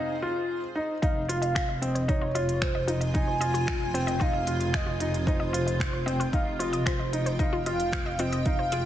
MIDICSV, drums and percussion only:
0, 0, Header, 1, 2, 480
1, 0, Start_track
1, 0, Key_signature, -4, "minor"
1, 0, Tempo, 530973
1, 925, Time_signature, 4, 2, 24, 8
1, 8004, End_track
2, 0, Start_track
2, 0, Title_t, "Drums"
2, 928, Note_on_c, 9, 36, 107
2, 932, Note_on_c, 9, 42, 30
2, 1019, Note_off_c, 9, 36, 0
2, 1023, Note_off_c, 9, 42, 0
2, 1171, Note_on_c, 9, 42, 74
2, 1261, Note_off_c, 9, 42, 0
2, 1288, Note_on_c, 9, 42, 43
2, 1378, Note_off_c, 9, 42, 0
2, 1407, Note_on_c, 9, 36, 102
2, 1411, Note_on_c, 9, 26, 102
2, 1411, Note_on_c, 9, 42, 34
2, 1498, Note_off_c, 9, 36, 0
2, 1501, Note_off_c, 9, 26, 0
2, 1501, Note_off_c, 9, 42, 0
2, 1650, Note_on_c, 9, 42, 74
2, 1740, Note_off_c, 9, 42, 0
2, 1768, Note_on_c, 9, 42, 40
2, 1858, Note_off_c, 9, 42, 0
2, 1887, Note_on_c, 9, 36, 98
2, 1888, Note_on_c, 9, 42, 32
2, 1978, Note_off_c, 9, 36, 0
2, 1979, Note_off_c, 9, 42, 0
2, 2128, Note_on_c, 9, 42, 73
2, 2219, Note_off_c, 9, 42, 0
2, 2250, Note_on_c, 9, 42, 42
2, 2340, Note_off_c, 9, 42, 0
2, 2367, Note_on_c, 9, 26, 95
2, 2367, Note_on_c, 9, 36, 107
2, 2367, Note_on_c, 9, 42, 31
2, 2457, Note_off_c, 9, 26, 0
2, 2457, Note_off_c, 9, 36, 0
2, 2457, Note_off_c, 9, 42, 0
2, 2606, Note_on_c, 9, 42, 78
2, 2696, Note_off_c, 9, 42, 0
2, 2724, Note_on_c, 9, 42, 42
2, 2815, Note_off_c, 9, 42, 0
2, 2845, Note_on_c, 9, 42, 33
2, 2846, Note_on_c, 9, 36, 109
2, 2935, Note_off_c, 9, 42, 0
2, 2936, Note_off_c, 9, 36, 0
2, 3087, Note_on_c, 9, 42, 80
2, 3177, Note_off_c, 9, 42, 0
2, 3208, Note_on_c, 9, 42, 45
2, 3298, Note_off_c, 9, 42, 0
2, 3325, Note_on_c, 9, 36, 104
2, 3326, Note_on_c, 9, 26, 101
2, 3326, Note_on_c, 9, 42, 35
2, 3416, Note_off_c, 9, 36, 0
2, 3417, Note_off_c, 9, 26, 0
2, 3417, Note_off_c, 9, 42, 0
2, 3570, Note_on_c, 9, 42, 79
2, 3660, Note_off_c, 9, 42, 0
2, 3689, Note_on_c, 9, 42, 40
2, 3780, Note_off_c, 9, 42, 0
2, 3805, Note_on_c, 9, 36, 104
2, 3808, Note_on_c, 9, 42, 31
2, 3895, Note_off_c, 9, 36, 0
2, 3898, Note_off_c, 9, 42, 0
2, 4042, Note_on_c, 9, 42, 76
2, 4133, Note_off_c, 9, 42, 0
2, 4164, Note_on_c, 9, 42, 43
2, 4254, Note_off_c, 9, 42, 0
2, 4285, Note_on_c, 9, 26, 98
2, 4285, Note_on_c, 9, 36, 113
2, 4285, Note_on_c, 9, 42, 34
2, 4375, Note_off_c, 9, 26, 0
2, 4375, Note_off_c, 9, 36, 0
2, 4375, Note_off_c, 9, 42, 0
2, 4524, Note_on_c, 9, 42, 83
2, 4614, Note_off_c, 9, 42, 0
2, 4650, Note_on_c, 9, 42, 43
2, 4740, Note_off_c, 9, 42, 0
2, 4764, Note_on_c, 9, 36, 107
2, 4774, Note_on_c, 9, 42, 33
2, 4854, Note_off_c, 9, 36, 0
2, 4865, Note_off_c, 9, 42, 0
2, 5011, Note_on_c, 9, 42, 84
2, 5101, Note_off_c, 9, 42, 0
2, 5131, Note_on_c, 9, 42, 43
2, 5222, Note_off_c, 9, 42, 0
2, 5244, Note_on_c, 9, 36, 106
2, 5254, Note_on_c, 9, 26, 108
2, 5254, Note_on_c, 9, 42, 34
2, 5335, Note_off_c, 9, 36, 0
2, 5344, Note_off_c, 9, 26, 0
2, 5344, Note_off_c, 9, 42, 0
2, 5494, Note_on_c, 9, 42, 74
2, 5585, Note_off_c, 9, 42, 0
2, 5610, Note_on_c, 9, 42, 43
2, 5701, Note_off_c, 9, 42, 0
2, 5724, Note_on_c, 9, 36, 111
2, 5727, Note_on_c, 9, 42, 33
2, 5814, Note_off_c, 9, 36, 0
2, 5817, Note_off_c, 9, 42, 0
2, 5968, Note_on_c, 9, 42, 79
2, 6059, Note_off_c, 9, 42, 0
2, 6087, Note_on_c, 9, 42, 43
2, 6177, Note_off_c, 9, 42, 0
2, 6203, Note_on_c, 9, 36, 108
2, 6207, Note_on_c, 9, 26, 96
2, 6207, Note_on_c, 9, 42, 32
2, 6294, Note_off_c, 9, 36, 0
2, 6297, Note_off_c, 9, 26, 0
2, 6297, Note_off_c, 9, 42, 0
2, 6448, Note_on_c, 9, 42, 80
2, 6539, Note_off_c, 9, 42, 0
2, 6566, Note_on_c, 9, 42, 42
2, 6657, Note_off_c, 9, 42, 0
2, 6683, Note_on_c, 9, 36, 106
2, 6688, Note_on_c, 9, 42, 33
2, 6773, Note_off_c, 9, 36, 0
2, 6779, Note_off_c, 9, 42, 0
2, 6927, Note_on_c, 9, 42, 77
2, 7018, Note_off_c, 9, 42, 0
2, 7048, Note_on_c, 9, 42, 43
2, 7139, Note_off_c, 9, 42, 0
2, 7165, Note_on_c, 9, 36, 98
2, 7171, Note_on_c, 9, 26, 100
2, 7171, Note_on_c, 9, 42, 33
2, 7255, Note_off_c, 9, 36, 0
2, 7261, Note_off_c, 9, 26, 0
2, 7261, Note_off_c, 9, 42, 0
2, 7403, Note_on_c, 9, 42, 76
2, 7494, Note_off_c, 9, 42, 0
2, 7526, Note_on_c, 9, 42, 40
2, 7616, Note_off_c, 9, 42, 0
2, 7644, Note_on_c, 9, 42, 33
2, 7646, Note_on_c, 9, 36, 107
2, 7735, Note_off_c, 9, 42, 0
2, 7736, Note_off_c, 9, 36, 0
2, 7883, Note_on_c, 9, 42, 77
2, 7974, Note_off_c, 9, 42, 0
2, 8004, End_track
0, 0, End_of_file